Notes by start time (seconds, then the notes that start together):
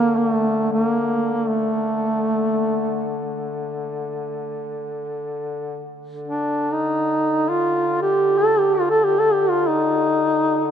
Already playing: D3 A#3
0.17 A#3
0.30 A3
0.72 A3
0.84 A#3
1.49 A3
6.06 D3
6.28 D4
6.73 D#4
7.49 F4
8.02 G4
8.38 A4
8.59 G4
8.75 F4
8.90 A4
9.04 G4
9.19 A4
9.33 G4
9.50 F4
9.68 D#4